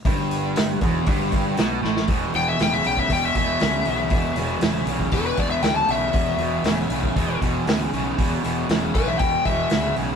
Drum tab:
HH |o-o-o-o-o-o-o---|o-o-o-o-o-o-o-o-|o-o-o-o-o-o-o-o-|o-o-o-o-o-o-o-o-|
SD |----o-------o-oo|----o-------o---|----o-------o---|----o-------o---|
BD |o-----o-o-o-----|o------oo-o-----|o------oo-o-----|o------oo-o-----|

HH |o-o-o-o-o-o-o-o-|
SD |----o-------o---|
BD |o-----o-o-o-----|